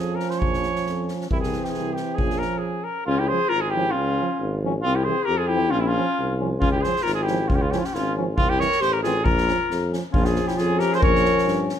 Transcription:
Already playing: tuba F2, euphonium F3, trombone C#4, trumpet G#4
0.15 trumpet A#4
0.20 snare
0.30 trumpet C5, snare
0.38 tuba A#1, trumpet C#5, kick
0.53 snare
0.63 snare
0.76 snare
0.86 tuba F2, snare
1.08 snare
1.21 snare
1.29 tuba C2, euphonium E3, trombone C4, trumpet E4, kick
1.40 trumpet G#4, snare
1.52 snare
1.64 trumpet G4, snare
1.69 trumpet G#4
1.74 tuba C2, snare
1.93 trumpet G4, snare
2.14 trumpet G#4, kick
2.19 tuba A#1, euphonium F3, trombone C#4
2.30 snare
2.38 trumpet A#4, snare
2.58 trumpet G#4
2.84 trumpet A#4
3.06 tuba C#2, clarinet C#4, trumpet F4
3.18 clarinet E4, trumpet G4
3.28 euphonium F3, trombone C#4, clarinet G#4, trumpet C5
3.49 tuba G#1, clarinet F4, trumpet A#4
3.61 clarinet F4, trumpet G#4
3.70 clarinet E4, trumpet G4
3.75 euphonium F3, trombone C#4
3.91 clarinet C#4, trumpet F4
3.96 tuba C#2
4.19 euphonium F3, trombone C#4
4.40 tuba G#1
4.64 euphonium F3, trombone C#4
4.81 clarinet C4, trumpet F4
4.85 tuba C2
4.95 clarinet E4, trumpet G4
5.04 euphonium E3, clarinet G#4, trumpet C5
5.10 trombone C4
5.24 clarinet G4, trumpet A#4
5.28 tuba F2
5.37 clarinet F4, trumpet G#4
5.47 clarinet E4, trumpet G4
5.53 euphonium E3, trombone C4
5.71 tuba A#1, clarinet C#4, trumpet F4
5.80 clarinet C4, trumpet E4
5.84 clarinet C#4, trumpet F4
5.96 euphonium F3, trombone C#4
6.19 tuba C2
6.40 euphonium F3, trombone C#4
6.60 tuba C#2, clarinet C#4, trumpet F4, kick
6.71 clarinet E4, trumpet G4
6.79 trombone C#4, clarinet G#4, trumpet C5
6.84 euphonium F3, snare
6.96 snare
7.02 tuba G#1, clarinet F4, trumpet A#4
7.06 snare
7.14 clarinet F4, trumpet G#4
7.22 clarinet E4, trumpet G4
7.27 euphonium F3, trombone C#4, snare
7.48 tuba C#2, clarinet C#4, trumpet F4, kick
7.55 clarinet E4, trumpet G4
7.62 trumpet F4
7.67 clarinet C#4, trumpet G4
7.71 euphonium F3, trombone C#4, clarinet E4, snare
7.78 trumpet F4
7.84 clarinet C#4, trumpet G4, snare
7.94 tuba G#1, clarinet C#4 E4, trumpet F4, snare
8.16 euphonium F3, trombone C#4
8.37 tuba C2, clarinet C4, trumpet F4, kick
8.49 clarinet E4, trumpet G4
8.59 euphonium E3, trombone C4, clarinet A#4, trumpet C#5, snare
8.72 snare
8.80 tuba A1, clarinet G4, trumpet C5, snare
8.93 clarinet G4, trumpet A#4
9.02 euphonium E3, trombone C4, clarinet F4, trumpet G#4, snare
9.22 tuba A#1, clarinet F4, trumpet A#4, kick
9.38 snare
9.47 euphonium F3, trombone C#4, snare
9.70 tuba F2, snare
9.92 euphonium F3, trombone C#4, snare
10.10 euphonium F3, clarinet C#4, trombone C#4, trumpet F4, kick
10.14 tuba A#1
10.23 clarinet F4, trumpet G#4, snare
10.35 snare
10.47 clarinet E4, trumpet G4, snare
10.56 tuba F2, clarinet F4, trumpet G#4, snare
10.79 clarinet G4, trumpet A#4, snare
10.92 clarinet G#4, trumpet C5, snare
11.00 tuba A#1, clarinet A#4, trumpet C#5, kick
11.15 snare
11.25 snare
11.38 snare
11.45 tuba G2, snare
11.69 snare

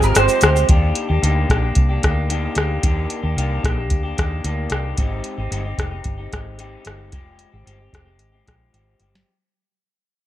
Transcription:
Already playing: clean electric guitar F3 G#3 C4 G4, synth keys G#3 C4 F4 G4
0.02 fingered electric bass G#1, clean electric guitar A#4, shaker
0.15 fingered electric bass G1, clean electric guitar F3 G#3 C4 G4 C5, cross-stick, closed hi-hat, shaker
0.28 shaker
0.41 fingered electric bass D2, clean electric guitar F3 G#3 C4 G4, cross-stick, closed hi-hat, shaker
0.55 clean electric guitar G#3 C4 G4, shaker
0.69 fingered electric bass D#2, clean electric guitar D#3 A#3 D4 G4, kick, closed hi-hat
0.95 closed hi-hat
1.09 fingered electric bass D#2, clean electric guitar A#3 D4 G4
1.22 fingered electric bass D2, clean electric guitar D#3 A#3 D4 G4, closed hi-hat
1.49 fingered electric bass A#1, clean electric guitar D#3 A#3 D4 G4, kick, cross-stick, closed hi-hat
1.62 clean electric guitar A#3 D4 G4
1.75 fingered electric bass C2, kick, closed hi-hat
1.89 clean electric guitar A#3 D4 G4
2.02 fingered electric bass D2, clean electric guitar D#3 A#3 D4 G4, kick, cross-stick, closed hi-hat
2.29 clean electric guitar D#3 A#3 D4 G4, closed hi-hat
2.55 fingered electric bass D2, clean electric guitar D#3 A#3 D4 G4, cross-stick, closed hi-hat
2.82 fingered electric bass D#2, clean electric guitar D#3 A#3 D4 G4, kick, closed hi-hat
3.10 closed hi-hat
3.23 fingered electric bass D#2, clean electric guitar A#3 D4 G4
3.37 fingered electric bass C2, clean electric guitar D#3 A#3 D4 G4, closed hi-hat
3.63 fingered electric bass A#1, clean electric guitar D#3 A#3 D4 G4, kick, cross-stick, closed hi-hat
3.77 clean electric guitar A#3 D4 G4
3.90 fingered electric bass D2, kick, closed hi-hat
4.03 clean electric guitar A#3 D4 G4
4.17 fingered electric bass D#2, clean electric guitar D#3 A#3 D4 G4, kick, cross-stick, closed hi-hat
4.44 fingered electric bass D2, clean electric guitar D#3 A#3 D4 G4, closed hi-hat
4.70 fingered electric bass C2, clean electric guitar D#3 A#3 D4 G4, cross-stick, closed hi-hat
4.97 fingered electric bass G#1, clean electric guitar G#3 C4 D#4 G4, kick, closed hi-hat
5.24 closed hi-hat
5.37 fingered electric bass G#1, clean electric guitar C4 D#4 G4
5.51 fingered electric bass G1, clean electric guitar G#3 C4 D#4 G4, closed hi-hat
5.64 clean electric guitar C4 D#4 G4
5.78 fingered electric bass F1, clean electric guitar G#3 C4 D#4 G4, kick, cross-stick, closed hi-hat
5.91 clean electric guitar C4 D#4 G4
6.04 fingered electric bass G1, kick, closed hi-hat
6.18 clean electric guitar C4 D#4 G4
6.31 fingered electric bass G#1, clean electric guitar G#3 C4 D#4 G4, kick, cross-stick, closed hi-hat
6.58 clean electric guitar G#3 C4 D#4 G4, closed hi-hat
6.85 fingered electric bass G1, clean electric guitar G#3 C4 D#4 G4, cross-stick, closed hi-hat
7.12 fingered electric bass F1, clean electric guitar F3 G#3 C4 G4, kick, closed hi-hat
7.39 closed hi-hat
7.52 fingered electric bass G#1, clean electric guitar G#3 C4 G4
7.65 fingered electric bass G1, clean electric guitar F3 G#3 C4 G4, closed hi-hat
7.79 clean electric guitar G#3 C4 G4
7.92 fingered electric bass F1, clean electric guitar F3 G#3 C4 G4, kick, cross-stick, closed hi-hat
8.05 clean electric guitar G#3 C4 G4
8.19 fingered electric bass G#1, closed hi-hat
8.32 clean electric guitar G#3 C4 G4
8.45 fingered electric bass A#1, clean electric guitar F3 G#3 C4 G4, kick, cross-stick, closed hi-hat
8.73 fingered electric bass G#1, clean electric guitar F3 G#3 C4 G4, closed hi-hat
8.99 fingered electric bass G1, clean electric guitar F3 G#3 C4 G4, closed hi-hat
9.15 snare

